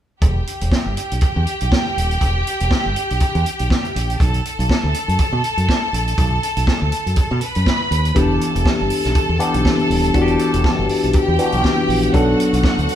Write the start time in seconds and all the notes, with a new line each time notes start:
0.22 E1 G4 G5, kick, closed hi-hat
0.47 closed hi-hat
0.61 E1, closed hi-hat
0.72 kick, snare
0.86 G1
0.97 closed hi-hat
1.11 B1, closed hi-hat
1.21 kick, closed hi-hat
1.36 E2
1.47 closed hi-hat
1.61 B1, closed hi-hat
1.72 kick, snare
1.97 D#1, closed hi-hat
2.11 closed hi-hat
2.21 E1, kick, closed hi-hat
2.47 closed hi-hat
2.60 E1, closed hi-hat
2.71 kick, snare
2.86 G1
2.96 closed hi-hat
3.10 B1, closed hi-hat
3.20 muted fingered electric bass stroke, kick, closed hi-hat
3.35 E2, closed hi-hat
3.46 closed hi-hat
3.59 B1, closed hi-hat
3.70 kick, snare
3.85 closed hi-hat
3.96 A#1, closed hi-hat
4.10 closed hi-hat
4.20 B1 A4 A5, kick, closed hi-hat
4.34 closed hi-hat
4.46 closed hi-hat
4.59 B1, closed hi-hat
4.70 kick, snare
4.84 D2
4.94 closed hi-hat
5.08 F#2, closed hi-hat
5.19 kick, closed hi-hat
5.33 B2
5.44 closed hi-hat
5.57 F#2, closed hi-hat
5.69 kick, snare
5.93 A#1, closed hi-hat
6.08 closed hi-hat
6.18 B1, kick, closed hi-hat
6.43 closed hi-hat
6.57 B1, closed hi-hat
6.67 kick, snare
6.82 D2
6.92 closed hi-hat
7.06 F#2, closed hi-hat
7.16 muted fingered electric bass stroke, kick, closed hi-hat
7.31 B2
7.41 B4 B5, closed hi-hat
7.55 F#2, closed hi-hat
7.66 kick, snare
7.91 D#2, closed hi-hat
8.05 closed hi-hat
8.15 E1 E3 B3 D4 G4 A4 A5, kick, closed hi-hat
8.41 closed hi-hat
8.55 E1, closed hi-hat
8.65 kick, snare
8.81 G1
8.90 open hi-hat
9.04 B1, snare, closed hi-hat
9.15 muted fingered electric bass stroke, kick, closed hi-hat
9.29 E2
9.39 E3 B3 D4 G4, closed hi-hat
9.54 B1, closed hi-hat
9.65 kick, snare
9.79 closed hi-hat
9.90 D#1, open hi-hat
10.04 closed hi-hat
10.14 E1 E3 B3 D4 F#4, kick, closed hi-hat
10.22 G4
10.28 closed hi-hat
10.39 closed hi-hat
10.54 E1, closed hi-hat
10.64 kick, snare
10.79 G1
10.89 open hi-hat
11.04 B1, closed hi-hat
11.13 G4 G5, muted fingered electric bass stroke, kick, closed hi-hat
11.28 E2
11.38 E3 B3 D4 F#4, closed hi-hat
11.46 G4
11.52 B1, closed hi-hat
11.64 kick, snare
11.89 A#1, open hi-hat
12.03 closed hi-hat
12.13 B1 F#3 B3 D4 F#4 A4 F#5, kick, closed hi-hat
12.40 closed hi-hat
12.53 B1, closed hi-hat
12.63 kick, snare
12.78 D2, closed hi-hat
12.89 open hi-hat